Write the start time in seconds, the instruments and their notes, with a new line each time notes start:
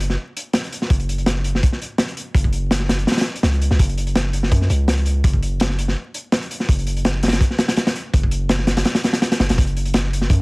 Already playing: 808-style bass F#1
0.00 closed hi-hat
0.10 snare
0.37 closed hi-hat
0.53 snare, closed hi-hat
0.64 closed hi-hat
0.72 closed hi-hat
0.82 snare
0.90 808-style bass F#1, kick, closed hi-hat
1.00 closed hi-hat
1.09 closed hi-hat
1.18 closed hi-hat
1.26 snare, closed hi-hat
1.44 closed hi-hat
1.55 snare
1.63 kick, closed hi-hat
1.72 snare
1.82 closed hi-hat
1.98 snare, closed hi-hat
2.08 closed hi-hat
2.17 closed hi-hat
2.35 808-style bass F#1, kick, closed hi-hat
2.44 kick
2.53 closed hi-hat
2.71 snare, closed hi-hat
2.80 snare
2.89 snare, closed hi-hat
2.99 closed hi-hat
3.07 snare, closed hi-hat
3.12 snare, closed hi-hat
3.17 snare, closed hi-hat
3.21 snare, closed hi-hat
3.26 closed hi-hat
3.36 closed hi-hat
3.43 808-style bass C#2, snare, closed hi-hat
3.53 closed hi-hat
3.62 closed hi-hat
3.71 808-style bass C#2, snare
3.79 808-style bass F#1, kick, closed hi-hat
3.89 closed hi-hat
3.98 closed hi-hat
4.07 closed hi-hat
4.16 snare, closed hi-hat
4.33 closed hi-hat
4.43 snare
4.52 808-style bass F#2, kick, closed hi-hat
4.61 snare
4.70 808-style bass C#2, closed hi-hat
4.88 snare, closed hi-hat
4.97 closed hi-hat
5.06 closed hi-hat
5.24 808-style bass F#1, kick, closed hi-hat
5.33 kick
5.43 closed hi-hat
5.60 snare, closed hi-hat
5.70 snare
5.79 closed hi-hat
5.88 snare
6.14 closed hi-hat
6.32 snare, closed hi-hat
6.42 closed hi-hat
6.51 closed hi-hat
6.60 snare
6.69 808-style bass F#1, kick, closed hi-hat
6.79 closed hi-hat
6.87 closed hi-hat
6.97 closed hi-hat
7.05 snare, closed hi-hat
7.23 snare, closed hi-hat
7.28 snare, closed hi-hat
7.33 snare, closed hi-hat
7.41 kick, closed hi-hat
7.51 snare
7.58 snare, closed hi-hat
7.68 snare, closed hi-hat
7.77 snare, closed hi-hat
7.87 snare, closed hi-hat
7.96 closed hi-hat
8.14 808-style bass F#1, kick, closed hi-hat
8.23 kick
8.31 closed hi-hat
8.49 snare, closed hi-hat
8.59 snare
8.67 snare, closed hi-hat
8.77 snare, closed hi-hat
8.85 snare, closed hi-hat
8.95 snare, closed hi-hat
9.04 snare, closed hi-hat
9.13 snare, closed hi-hat
9.22 snare, closed hi-hat
9.32 snare, closed hi-hat
9.40 808-style bass F#1, snare, closed hi-hat
9.49 808-style bass E1, snare, closed hi-hat
9.58 808-style bass F#1, kick, closed hi-hat
9.67 closed hi-hat
9.77 closed hi-hat
9.85 closed hi-hat
9.94 snare, closed hi-hat
10.13 closed hi-hat
10.21 snare
10.30 808-style bass F#2, kick, closed hi-hat